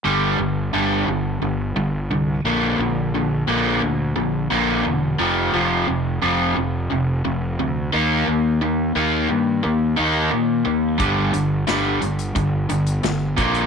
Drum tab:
HH |----------------|----------------|----------------|----------------|
SD |----------------|----------------|----------------|----------------|
BD |----------------|----------------|----------------|----------------|

HH |x-x-x-xxx-xxx-xx|
SD |----o-------o---|
BD |o-------o-----o-|